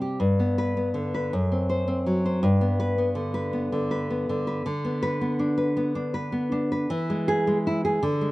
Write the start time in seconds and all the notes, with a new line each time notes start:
Already playing: C3 G3 C4
0.01 G4
0.20 G2
0.39 B3
0.58 B4
0.77 B3
0.94 D3
1.14 B4
1.33 F#2
1.52 C4
1.69 C5
1.88 C4
2.06 F#3
2.26 C5
2.43 G2
2.61 B3
2.80 B4
2.98 B3
3.15 D3
3.34 B4
3.53 B3
3.72 D3
3.91 B4
4.10 B3
4.29 D3
4.47 B4
4.66 D3
4.85 B3
5.03 B4
5.21 B3
5.39 D4
5.58 B4
5.77 B3
5.95 D4
6.14 B4
6.32 B3
6.52 D4
6.72 B4
6.90 E3
7.10 G#3
7.28 G#4
7.47 G#3
7.67 E4
7.85 G#4
8.03 D3
8.21 G#3